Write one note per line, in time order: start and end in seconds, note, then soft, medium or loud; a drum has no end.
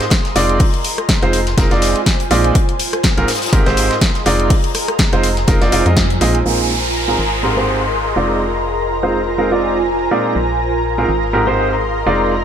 0.00 1.11 G#4 medium
0.00 1.25 D#5 medium
0.00 1.12 A#5 medium
0.00 1.25 C6 medium
0.00 snare medium
0.00 closed hi-hat soft
0.10 kick loud
0.10 snare loud
0.10 closed hi-hat medium
0.25 snare soft
0.25 closed hi-hat soft
0.36 0.59 F1 loud
0.36 0.62 G#3 loud
0.36 0.62 C4 medium
0.36 0.62 D#4 medium
0.36 2.85 F4 medium
0.36 0.62 F4 medium
0.36 0.62 D5 loud
0.36 snare soft
0.36 closed hi-hat medium
0.36 open hi-hat loud
0.49 closed hi-hat soft
0.60 kick loud
0.60 closed hi-hat medium
0.60 open hi-hat medium
0.74 closed hi-hat soft
0.84 closed hi-hat medium
0.84 open hi-hat loud
0.92 2.85 G#5 medium
0.98 2.85 C5 medium
0.98 cross-stick medium
0.98 closed hi-hat soft
1.09 kick medium
1.09 snare loud
1.09 closed hi-hat medium
1.23 1.56 F1 medium
1.23 1.38 G#3 medium
1.23 1.38 C4 medium
1.23 1.38 D#4 medium
1.23 1.38 F4 medium
1.23 1.38 C5 medium
1.23 closed hi-hat soft
1.33 closed hi-hat medium
1.33 open hi-hat loud
1.47 snare medium
1.47 closed hi-hat soft
1.58 1.69 F1 loud
1.58 1.69 G#3 medium
1.58 1.69 C4 medium
1.58 1.69 D#4 medium
1.58 1.69 F4 medium
1.58 1.69 A#4 loud
1.58 kick loud
1.58 snare soft
1.58 snare loud
1.58 closed hi-hat medium
1.71 1.95 F1 loud
1.71 1.97 G#3 medium
1.71 1.97 C4 medium
1.71 1.97 D#4 medium
1.71 1.97 F4 medium
1.71 1.97 D5 loud
1.71 snare soft
1.71 closed hi-hat soft
1.82 snare loud
1.82 closed hi-hat medium
1.82 open hi-hat loud
1.96 closed hi-hat soft
2.06 kick loud
2.06 snare loud
2.06 closed hi-hat medium
2.06 closed hi-hat loud
2.20 closed hi-hat soft
2.31 2.52 A#1 medium
2.31 2.54 A#2 loud
2.31 2.54 G#3 medium
2.31 2.54 C4 medium
2.31 2.54 D#4 medium
2.31 2.54 F4 medium
2.31 2.54 D5 loud
2.31 closed hi-hat medium
2.31 open hi-hat loud
2.44 closed hi-hat soft
2.55 kick loud
2.55 closed hi-hat loud
2.69 closed hi-hat soft
2.79 closed hi-hat medium
2.79 open hi-hat loud
2.89 5.01 C6 medium
2.89 cross-stick medium
2.89 closed hi-hat soft
3.03 kick medium
3.03 snare loud
3.03 closed hi-hat loud
3.03 closed hi-hat medium
3.18 3.25 A#1 medium
3.18 3.27 G#2 medium
3.18 3.27 G#3 medium
3.18 3.27 C4 medium
3.18 3.27 D#4 medium
3.18 3.27 F4 medium
3.18 3.27 A#4 medium
3.18 closed hi-hat soft
3.28 5.15 G#4 medium
3.28 snare medium
3.28 closed hi-hat medium
3.28 open hi-hat loud
3.35 4.95 D#5 medium
3.35 snare medium
3.35 closed hi-hat medium
3.42 snare medium
3.42 closed hi-hat soft
3.42 closed hi-hat medium
3.46 snare medium
3.46 closed hi-hat medium
3.53 3.64 G#1 loud
3.53 3.64 G#2 medium
3.53 3.64 G#3 medium
3.53 3.64 C4 medium
3.53 3.64 D#4 medium
3.53 3.64 G4 medium
3.53 3.64 A#4 loud
3.53 kick loud
3.53 closed hi-hat loud
3.53 closed hi-hat medium
3.66 3.90 G#1 loud
3.66 3.92 G#2 medium
3.66 3.92 G#3 medium
3.66 3.92 C4 medium
3.66 3.92 D#4 medium
3.66 3.92 G4 medium
3.66 3.92 C5 loud
3.66 snare medium
3.66 closed hi-hat soft
3.73 5.15 A#5 medium
3.77 closed hi-hat medium
3.77 open hi-hat loud
3.91 snare medium
3.91 closed hi-hat soft
4.01 kick loud
4.01 snare loud
4.01 closed hi-hat medium
4.01 closed hi-hat loud
4.15 snare soft
4.15 closed hi-hat soft
4.26 4.50 F1 medium
4.26 4.52 G#3 loud
4.26 4.52 C4 medium
4.26 4.52 D#4 medium
4.26 4.52 F4 medium
4.26 6.75 F4 medium
4.26 4.52 D5 loud
4.26 closed hi-hat medium
4.26 open hi-hat loud
4.40 6.75 C5 medium
4.40 closed hi-hat soft
4.50 kick loud
4.50 closed hi-hat loud
4.50 open hi-hat medium
4.64 closed hi-hat soft
4.74 cross-stick medium
4.74 closed hi-hat medium
4.74 open hi-hat loud
4.88 cross-stick medium
4.88 closed hi-hat soft
4.99 kick loud
4.99 snare loud
4.99 closed hi-hat medium
4.99 closed hi-hat loud
5.13 5.46 F1 medium
5.13 5.28 G#3 medium
5.13 5.28 C4 medium
5.13 5.28 D#4 medium
5.13 5.28 F4 medium
5.13 5.28 C5 medium
5.13 closed hi-hat soft
5.23 6.75 G#5 medium
5.23 closed hi-hat medium
5.23 open hi-hat loud
5.37 snare soft
5.37 closed hi-hat soft
5.48 5.59 F1 loud
5.48 5.60 G#3 medium
5.48 5.60 C4 medium
5.48 5.60 D#4 medium
5.48 5.60 F4 medium
5.48 5.60 A#4 loud
5.48 kick loud
5.48 snare soft
5.48 closed hi-hat loud
5.61 5.70 F1 loud
5.61 5.70 G#3 medium
5.61 5.70 C4 medium
5.61 5.70 D#4 medium
5.61 5.70 F4 medium
5.61 5.70 D5 loud
5.61 snare soft
5.61 closed hi-hat soft
5.72 5.83 F1 medium
5.72 5.84 G#3 medium
5.72 5.84 C4 medium
5.72 5.84 D#4 medium
5.72 5.84 F4 medium
5.72 5.84 D5 loud
5.72 closed hi-hat medium
5.72 open hi-hat loud
5.86 6.19 F2 loud
5.86 6.01 G#3 medium
5.86 6.01 C4 medium
5.86 6.01 D#4 medium
5.86 6.01 F4 medium
5.86 6.01 D#5 medium
5.86 closed hi-hat soft
5.96 kick loud
5.96 snare loud
5.96 closed hi-hat medium
6.10 closed hi-hat soft
6.21 6.43 A#1 loud
6.21 6.38 A#2 medium
6.21 6.38 G#3 medium
6.21 6.38 C4 medium
6.21 6.38 D#4 medium
6.21 6.38 F4 medium
6.21 6.38 D#5 medium
6.21 closed hi-hat medium
6.21 open hi-hat loud
6.35 closed hi-hat soft
6.45 7.16 A#1 medium
6.45 6.72 A#2 medium
6.45 6.72 G#3 medium
6.45 6.72 C4 medium
6.45 6.72 D#4 medium
6.45 6.72 F4 medium
6.45 6.72 A#4 medium
6.45 12.44 A#4 medium
6.45 12.44 A#5 medium
6.45 closed hi-hat medium
6.45 downlifter medium
6.80 9.05 C6 medium
6.94 closed hi-hat medium
7.08 7.17 G#2 medium
7.08 7.17 G#3 medium
7.08 7.17 C4 medium
7.08 7.17 D#4 medium
7.08 7.17 F4 medium
7.08 7.17 A#4 medium
7.19 8.14 G#1 medium
7.19 9.05 G#4 medium
7.19 closed hi-hat medium
7.36 9.05 D#5 medium
7.43 7.55 G#2 medium
7.43 7.55 G#3 medium
7.43 7.55 C4 medium
7.43 7.55 D#4 medium
7.43 7.55 G4 medium
7.43 7.55 A#4 medium
7.43 closed hi-hat medium
7.56 7.82 G#2 medium
7.56 7.82 G#3 medium
7.56 7.82 C4 medium
7.56 7.82 D#4 medium
7.56 7.82 G4 medium
7.56 7.82 C5 medium
7.56 snare medium
7.63 9.05 A#5 medium
7.81 snare soft
7.92 closed hi-hat medium
8.05 snare soft
8.16 10.09 F1 medium
8.16 8.42 G#3 medium
8.16 8.42 C4 medium
8.16 8.42 D#4 medium
8.16 10.66 F4 medium
8.16 8.42 F4 medium
8.16 8.42 D5 loud
8.16 snare soft
8.25 10.66 C5 medium
8.65 10.66 G#5 medium
8.65 closed hi-hat medium
8.90 closed hi-hat medium
9.03 9.18 G#3 medium
9.03 9.18 C4 medium
9.03 9.18 D#4 medium
9.03 9.18 F4 medium
9.03 9.18 C5 medium
9.13 closed hi-hat medium
9.28 snare soft
9.38 9.50 G#3 medium
9.38 9.50 C4 medium
9.38 9.50 D#4 medium
9.38 9.50 F4 medium
9.38 9.50 A#4 medium
9.52 9.78 G#3 medium
9.52 9.78 C4 medium
9.52 9.78 D#4 medium
9.52 9.78 F4 medium
9.52 9.78 D5 medium
9.52 snare soft
9.87 closed hi-hat medium
10.00 closed hi-hat soft
10.11 10.34 A#2 medium
10.11 10.34 G#3 medium
10.11 10.34 C4 medium
10.11 10.34 D#4 medium
10.11 10.34 F4 medium
10.11 10.34 D5 loud
10.35 11.07 A#1 medium
10.35 closed hi-hat medium
10.59 closed hi-hat medium
10.70 12.44 C6 medium
10.84 closed hi-hat medium
10.98 11.08 G#2 medium
10.98 11.08 G#3 medium
10.98 11.08 C4 medium
10.98 11.08 D#4 medium
10.98 11.08 F4 medium
10.98 11.08 A#4 medium
11.09 12.04 G#1 medium
11.09 12.44 G#4 medium
11.09 closed hi-hat medium
11.33 11.45 G#2 medium
11.33 11.45 G#3 medium
11.33 11.45 C4 medium
11.33 11.45 D#4 medium
11.33 11.45 G4 medium
11.33 11.45 A#4 medium
11.47 11.73 G#2 medium
11.47 11.73 G#3 medium
11.47 11.73 C4 medium
11.47 11.73 D#4 medium
11.47 11.73 G4 medium
11.47 11.73 C5 medium
11.47 snare medium
11.53 12.44 D#5 medium
11.53 12.44 A#5 medium
11.71 snare soft
11.83 closed hi-hat medium
11.96 snare soft
12.06 12.44 F1 medium
12.06 12.33 G#3 medium
12.06 12.33 C4 medium
12.06 12.33 D#4 medium
12.06 12.44 F4 medium
12.06 12.33 F4 medium
12.06 12.33 D5 loud
12.31 open hi-hat medium